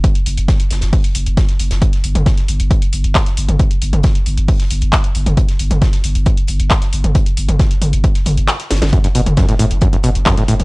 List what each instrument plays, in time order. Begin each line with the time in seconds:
0.04 kick, closed hi-hat
0.15 closed hi-hat
0.26 sub bass F#1, closed hi-hat, open hi-hat
0.37 sub bass F#1, closed hi-hat
0.48 kick, snare, closed hi-hat
0.60 closed hi-hat
0.70 sub bass F#1, snare, closed hi-hat, open hi-hat
0.81 sub bass F#1, snare, closed hi-hat
0.93 kick, closed hi-hat, open hi-hat
1.04 closed hi-hat
1.15 sub bass F#1, closed hi-hat, open hi-hat
1.26 sub bass F#1, closed hi-hat
1.37 kick, snare, closed hi-hat
1.49 snare, closed hi-hat
1.59 sub bass F#1, closed hi-hat, open hi-hat
1.71 sub bass F#1, snare, closed hi-hat
1.82 kick, closed hi-hat
1.93 snare, closed hi-hat
2.04 sub bass G1, closed hi-hat, open hi-hat
2.15 sub bass G1, closed hi-hat, mid tom
2.26 kick, snare, closed hi-hat
2.38 snare, closed hi-hat
2.48 sub bass G1, closed hi-hat, open hi-hat
2.60 sub bass G1, closed hi-hat
2.71 kick, closed hi-hat
2.82 closed hi-hat
2.93 sub bass G1, closed hi-hat, open hi-hat
3.04 sub bass G1, closed hi-hat
3.15 kick, snare, clap, closed hi-hat
3.26 snare, closed hi-hat
3.37 sub bass G1, closed hi-hat, open hi-hat
3.49 sub bass G1, closed hi-hat, mid tom
3.59 kick, closed hi-hat
3.71 closed hi-hat
3.82 sub bass G1, closed hi-hat, open hi-hat
3.93 sub bass G1, closed hi-hat, mid tom
4.03 kick, snare, closed hi-hat
4.15 closed hi-hat
4.26 sub bass G1, closed hi-hat, open hi-hat
4.38 sub bass G1, closed hi-hat
4.48 kick, closed hi-hat, open hi-hat
4.60 snare, closed hi-hat
4.70 sub bass G1, closed hi-hat, open hi-hat
4.81 sub bass G1, closed hi-hat
4.93 kick, snare, clap, closed hi-hat
5.04 closed hi-hat
5.15 sub bass G1, closed hi-hat, open hi-hat
5.26 sub bass G1, closed hi-hat, mid tom
5.37 kick, closed hi-hat
5.49 snare, closed hi-hat
5.59 sub bass G1, closed hi-hat, open hi-hat
5.70 sub bass G1, closed hi-hat, mid tom
5.81 kick, snare, closed hi-hat
5.93 snare, closed hi-hat
6.04 sub bass G1, closed hi-hat, open hi-hat
6.15 sub bass G1, closed hi-hat
6.26 kick, closed hi-hat
6.37 closed hi-hat
6.47 sub bass G1, closed hi-hat, open hi-hat
6.60 sub bass G1, closed hi-hat
6.70 kick, snare, clap, closed hi-hat
6.82 snare, closed hi-hat
6.93 sub bass G1, closed hi-hat, open hi-hat
7.04 sub bass G1, closed hi-hat, mid tom
7.15 kick, closed hi-hat
7.26 closed hi-hat
7.37 sub bass G1, closed hi-hat, open hi-hat
7.49 sub bass G1, closed hi-hat, mid tom
7.59 kick, snare, closed hi-hat
7.71 closed hi-hat
7.82 sub bass G1, closed hi-hat, open hi-hat, mid tom
7.93 sub bass G1, closed hi-hat
8.04 kick, closed hi-hat
8.15 snare, closed hi-hat
8.26 sub bass G1, closed hi-hat, open hi-hat, mid tom
8.37 sub bass G1, closed hi-hat
8.48 snare, clap, closed hi-hat
8.60 snare, closed hi-hat
8.70 sub bass G1, snare, closed hi-hat, open hi-hat
8.76 snare, closed hi-hat
8.81 sub bass G1, snare, closed hi-hat, mid tom
8.87 snare, closed hi-hat
8.93 acid bass F#2, kick, closed hi-hat
9.04 acid bass F#2, snare, closed hi-hat
9.15 sub bass F#1, acid bass B2, closed hi-hat, open hi-hat
9.26 sub bass F#1, closed hi-hat, mid tom
9.37 acid bass F#2, kick, snare, closed hi-hat
9.49 acid bass A2, snare, closed hi-hat
9.59 sub bass F#1, acid bass A2, closed hi-hat, open hi-hat
9.70 sub bass F#1, closed hi-hat
9.81 acid bass F#2, kick, closed hi-hat
9.93 acid bass F#2, closed hi-hat
10.03 sub bass F#1, acid bass B2, closed hi-hat, open hi-hat
10.15 sub bass F#1, closed hi-hat
10.26 acid bass F#2, kick, snare, clap, closed hi-hat
10.37 acid bass A2, snare, closed hi-hat
10.48 sub bass F#1, acid bass A2, closed hi-hat, open hi-hat
10.60 sub bass F#1, closed hi-hat, mid tom